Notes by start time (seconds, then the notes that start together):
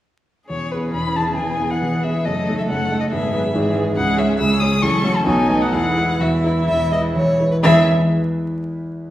0.49 E1 E2 E3 C#4 G#4 C#5
0.71 B3 E4 G#4 B4
0.93 E1 E2 B5
1.15 B3 E4 G#4 A5
1.37 E1 E2 B3 G#5
1.60 B3 E4 G#4
1.70 F#5
1.81 E1 E2 B3
2.02 B3 E4 G#4 E5
2.24 F#1 F#2 F#3 A3 A4 D#5
2.48 A3 D#4 A4
2.58 E5
2.68 F#1 F#2 A3 F#5
2.91 A3 D#4 A4
3.00 D#5
3.10 G#1 G#2 G#3 B3 G#4 E5
3.33 F#3 G#3 G#4 B4
3.52 G#1 G#2 E3 G#3 G#4
3.76 G#3 G#4 B4
3.96 C#2 C#3 G#3 C#4 G#4 F#5
4.18 G#3 G#4 C#5 E5
4.38 C#2 C#3 G#3 C#4 G#4 E6
4.60 G#3 G#4 C#5 D#6
4.81 A1 A2 F#3 C#4 A4 C#6
5.03 A3 F#4 C#5
5.16 A5
5.26 B1 B2 F#3 D#4 A4 G#5
5.49 A3 D#4 B4
5.62 F#5
5.72 E1 E2 E3 E4 G#4 F#5
5.97 G#3 E4 B4
6.19 E1 E2 E3 E4 F#4 E5
6.44 G#3 E4 B4
6.68 E1 E2 E5
6.92 G#3 E4 B4 D#5
7.16 E1 E2 C#5
7.40 G#3 E4 B4
7.51 B4
7.62 E2 E3 G#3 E4 G#4 B4 E5